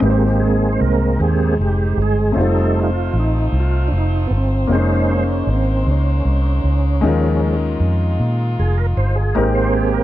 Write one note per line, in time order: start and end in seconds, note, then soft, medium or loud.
0.00 0.76 G#1 medium
0.00 1.15 G#2 soft
0.00 2.33 D#3 medium
0.00 2.31 G#3 medium
0.00 2.32 G#3 soft
0.00 1.19 A#3 soft
0.00 2.31 C4 soft
0.00 1.19 C4 medium
0.00 2.32 D#4 soft
0.00 2.34 D#4 medium
0.00 2.32 G4 soft
0.00 0.43 G4 medium
0.00 0.10 B4 soft
0.00 6.99 C5 medium
0.10 2.36 C5 medium
0.40 0.74 G#4 medium
0.73 0.80 C5 medium
0.81 1.17 C2 medium
0.81 1.21 A#4 medium
1.20 1.55 D#2 medium
1.20 1.55 A#3 soft
1.20 1.55 C4 soft
1.20 1.55 G4 soft
1.20 1.57 G#4 medium
1.59 1.95 F1 medium
1.59 2.00 G4 medium
1.97 2.33 G1 medium
2.02 2.40 G#4 medium
2.32 4.64 A3 medium
2.32 4.67 A3 medium
2.32 4.64 C4 soft
2.32 4.65 D#4 soft
2.32 9.32 D#4 medium
2.32 4.65 F4 medium
2.32 4.67 F4 medium
2.37 3.10 F1 medium
2.37 4.67 C5 medium
2.41 2.90 G3 soft
2.41 2.91 A3 soft
2.41 2.90 D#4 medium
2.41 2.80 A4 loud
2.83 3.19 F4 medium
3.14 3.50 A1 medium
3.20 3.57 D#4 medium
3.52 3.89 C2 medium
3.60 3.89 F4 medium
3.88 4.28 F1 medium
3.88 3.93 D4 medium
3.98 4.28 D#4 medium
4.27 4.67 G1 medium
4.27 4.33 B3 medium
4.37 4.74 C4 medium
4.67 5.43 F1 loud
4.67 9.32 G#3 medium
4.67 6.98 A#3 medium
4.67 9.32 A#3 medium
4.67 4.76 C4 soft
4.67 6.99 D#4 medium
4.67 7.00 G#4 medium
4.72 5.24 G#3 soft
4.72 7.01 C#4 medium
4.72 5.16 C#4 soft
4.72 5.13 D#4 medium
4.72 7.00 C5 medium
4.72 5.24 C5 soft
5.17 5.49 C#4 medium
5.47 5.83 G#1 medium
5.53 5.91 C4 medium
5.87 6.22 C#2 medium
5.91 7.05 C#4 medium
6.25 6.61 C2 medium
6.64 7.00 C#2 medium
7.01 7.77 D#2 medium
7.01 8.16 D#3 medium
7.01 7.56 F3 soft
7.01 9.31 G#3 medium
7.01 9.32 C#4 medium
7.01 9.33 D#4 medium
7.01 9.35 F4 medium
7.05 7.56 G#3 soft
7.05 7.56 C#4 medium
7.05 9.34 F4 medium
7.05 9.34 A#4 medium
7.80 8.16 F2 medium
8.20 8.56 A#2 medium
8.59 8.95 F1 medium
8.59 8.79 G#4 medium
8.78 8.87 A#4 medium
8.97 9.33 G1 medium
8.97 9.18 C5 medium
9.16 9.36 G#4 medium
9.35 10.03 G#1 medium
9.35 10.03 G#2 medium
9.35 10.03 G#3 medium
9.35 10.03 A#3 medium
9.35 10.03 A#3 soft
9.35 10.03 C4 medium
9.35 10.03 D#4 medium
9.35 10.03 G4 soft
9.35 10.03 G4 medium
9.35 9.44 A#4 loud
9.35 10.03 A#4 medium
9.55 9.73 C5 medium
9.74 9.95 G#4 medium
9.94 10.03 A#4 medium